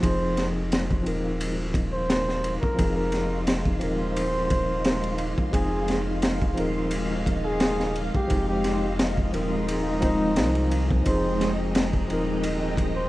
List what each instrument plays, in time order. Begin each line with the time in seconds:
Already playing: tine electric piano D#4 A#4
0.00 sub bass F1, tine electric piano F3 C4 D#4, string machine G#3 D#5 F5 C6, synth drone D#4, muted trumpet C5, kick, ride
0.04 tine electric piano G#4
0.37 snare, ride
0.72 snare, ride
0.91 kick
1.02 tine electric piano F3 C4
1.06 sub bass D#1, tine electric piano D#4 A#4, ride
1.41 ride
1.74 kick, ride
1.93 muted trumpet C5
2.10 snare, ride
2.29 snare
2.44 ride
2.61 muted trumpet A#4, kick
2.75 sub bass F1, tine electric piano F3 C4 D#4, kick, ride
2.80 tine electric piano G#4
2.95 muted trumpet A#4
3.12 snare, ride
3.47 snare, ride
3.65 kick
3.79 sub bass D#1, tine electric piano F3 C4 D#4, ride
3.84 tine electric piano A#4
3.98 muted trumpet C5
4.16 ride
4.50 kick, ride
4.85 snare, ride
5.04 ride
5.18 ride
5.38 kick
5.51 sub bass F1, tine electric piano F3 C4, muted trumpet G#4, kick, ride
5.55 tine electric piano D#4 G#4
5.88 snare, ride
6.22 snare, ride
6.42 kick
6.54 sub bass D#1, tine electric piano F3 C4 D#4, ride
6.60 tine electric piano A#4
6.91 ride
7.26 kick, ride
7.45 muted trumpet G#4
7.60 snare, ride
7.80 snare
7.95 ride
8.14 muted trumpet G4, kick
8.28 sub bass F1, tine electric piano F3 C4 D#4, kick, ride
8.33 tine electric piano G#3
8.49 muted trumpet G4
8.64 snare, ride
8.99 snare, ride
9.17 kick
9.33 sub bass D#1, tine electric piano F3 C4 D#4 A#4, ride
9.52 muted trumpet D#4
9.68 ride
10.00 tine electric piano F3 C4 D#4, kick, ride
10.05 tine electric piano C5
10.36 sub bass C2, snare, ride
10.55 ride
10.71 ride
10.91 kick
11.04 sub bass F1, tine electric piano F3 C4 D#4, muted trumpet C5, string machine G5 A#5, kick, ride
11.09 tine electric piano G#4
11.41 snare, ride
11.75 snare, ride
11.93 kick
12.08 sub bass D#1, tine electric piano F3 C4 D#4, ride
12.13 tine electric piano A#4
12.44 ride
12.77 kick, ride
12.97 muted trumpet C5